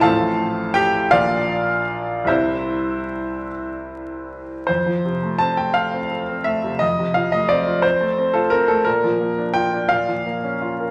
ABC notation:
X:1
M:6/8
L:1/16
Q:3/8=56
K:F
V:1 name="Grand piano"
[Afa]4 [Gg]2 [Fdf]6 | [Ece]6 z6 | c4 a g f4 e2 | _e2 f e d2 c3 A B A |
B4 g2 f6 |]
V:2 name="Grand piano"
[A,,,A,,F,CF]6 [B,,,B,,F,B,D]6 | [C,,C,G,C]12 | F,, F, C, A, C A, A C A C A, C, | F,, C, F, A, C F C A, C F C A, |
B,, F, B, D F D B,, F, B, _D F B |]